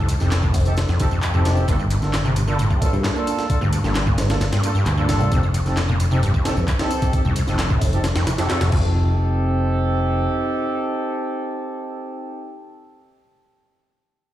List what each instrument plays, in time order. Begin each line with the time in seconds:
Already playing: picked electric bass C2
0.09 acid bass F2, closed hi-hat, ride, tambourine
0.20 picked electric bass F1, acid bass F2, brass ensemble C4 D#4 G4 A4, snare, tambourine
0.31 acid bass F2, snare, clap, closed hi-hat, tambourine
0.43 acid bass A2, kick, tambourine
0.54 acid bass F2, kick, open hi-hat, ride, tambourine
0.65 acid bass G2, brass ensemble C4 D#4 G4 A4, closed hi-hat, tambourine
0.77 acid bass D#2, snare, closed hi-hat, tambourine
0.88 acid bass F2, snare, tambourine
1.00 picked electric bass F1, acid bass F2, brass ensemble C4 D#4 G4 A4, kick, closed hi-hat, ride, tambourine
1.11 acid bass F2, tambourine
1.22 acid bass F2, clap, closed hi-hat, tambourine
1.34 picked electric bass F1, acid bass F2, brass ensemble C4 D#4 G4 A4, tambourine
1.45 acid bass F2, snare, closed hi-hat, ride, tambourine
1.56 acid bass G2, tambourine
1.68 picked electric bass G1, acid bass G2, brass ensemble A#3 D4 F4 A4, kick, closed hi-hat, tambourine
1.79 acid bass G2, tambourine
1.90 acid bass G2, closed hi-hat, ride, tambourine
2.02 picked electric bass G1, brass ensemble A#3 D4 F4 A4, snare, tambourine
2.13 acid bass G2, snare, clap, closed hi-hat, tambourine
2.25 acid bass C3, tambourine
2.36 acid bass G2, closed hi-hat, ride, tambourine
2.47 acid bass D3, brass ensemble A#3 D4 F4 A4, tambourine
2.59 acid bass A2, closed hi-hat, tambourine
2.70 acid bass G2, kick, tambourine
2.81 acid bass G1, brass ensemble A#3 D4 F4 A4, kick, closed hi-hat, ride, tambourine
2.93 acid bass G2, picked electric bass G2, tambourine
3.04 acid bass G2, snare, clap, closed hi-hat, tambourine
3.16 brass ensemble A#3 D4 F4 A4, tambourine
3.27 closed hi-hat, ride, tambourine
3.39 snare, tambourine
3.50 brass ensemble A#3 D4 F4 A4, muted picked electric bass stroke, kick, closed hi-hat, tambourine
3.61 picked electric bass D2, acid bass G2, tambourine
3.72 acid bass G2, closed hi-hat, ride, tambourine
3.84 picked electric bass G1, acid bass G2, brass ensemble A#3 D4 F4 A4, snare, tambourine
3.95 acid bass G2, snare, clap, closed hi-hat, tambourine
4.06 acid bass A#2, kick, tambourine
4.18 acid bass G2, snare, closed hi-hat, ride, tambourine
4.29 acid bass A2, brass ensemble A#3 D4 F4 A4, snare, closed hi-hat, tambourine
4.40 acid bass F2, snare, closed hi-hat, tambourine
4.52 acid bass G2, snare, closed hi-hat, tambourine
4.63 acid bass G2, brass ensemble A#3 D4 F4 A4, closed hi-hat, ride, tambourine
4.75 acid bass G2, muted picked electric bass stroke, tambourine
4.86 picked electric bass D2, acid bass G2, clap, closed hi-hat, tambourine
4.97 acid bass G2, brass ensemble A#3 D4 F4 A4, tambourine
5.09 picked electric bass G1, acid bass G2, snare, closed hi-hat, ride, tambourine
5.20 picked electric bass C2, acid bass A2, tambourine
5.31 picked electric bass F1, acid bass F2, brass ensemble C4 D#4 G4 A4, kick, closed hi-hat, tambourine
5.43 acid bass F2, tambourine
5.54 acid bass F2, closed hi-hat, ride, tambourine
5.66 picked electric bass F1, brass ensemble C4 D#4 G4 A4, snare, tambourine
5.77 acid bass F2, snare, clap, closed hi-hat, tambourine
5.88 acid bass A#2, tambourine
6.00 acid bass F2, closed hi-hat, ride, tambourine
6.11 acid bass C3, brass ensemble C4 D#4 G4 A4, tambourine
6.22 acid bass G2, closed hi-hat, tambourine
6.34 acid bass F2, kick, tambourine
6.45 acid bass F1, brass ensemble C4 D#4 G4 A4, snare, closed hi-hat, ride, tambourine
6.57 acid bass F2, picked electric bass F2, tambourine
6.68 acid bass F2, kick, clap, closed hi-hat, tambourine
6.79 brass ensemble C4 D#4 G4 A4, snare, closed hi-hat, tambourine
6.91 ride, tambourine
7.02 kick, closed hi-hat, tambourine
7.13 brass ensemble C4 D#4 G4 A4, muted picked electric bass stroke, kick, closed hi-hat, tambourine
7.25 picked electric bass C2, acid bass F2, tambourine
7.36 acid bass F2, closed hi-hat, ride, tambourine
7.47 picked electric bass F1, acid bass F2, brass ensemble C4 D#4 G4 A4, snare, tambourine
7.59 acid bass F2, snare, clap, closed hi-hat, tambourine
7.70 acid bass A2, kick, tambourine
7.81 acid bass F2, kick, open hi-hat, ride, tambourine
7.93 acid bass G2, brass ensemble C4 D#4 G4 A4, closed hi-hat, tambourine
8.04 acid bass D#2, snare, closed hi-hat, tambourine
8.16 acid bass F2, snare, closed hi-hat, tambourine
8.27 picked electric bass F1, acid bass F2, snare, closed hi-hat, ride, tambourine
8.38 acid bass F2, brass ensemble C4 D#4 G4 A4, snare, closed hi-hat, tambourine
8.50 acid bass F2, brass ensemble C4 D#4 G4 A4, snare, clap, closed hi-hat, tambourine
8.61 picked electric bass F1, acid bass F2, snare, closed hi-hat, tambourine
8.72 picked electric bass F1, acid bass F2, brass ensemble C4 D#4 G4 A4, kick, crash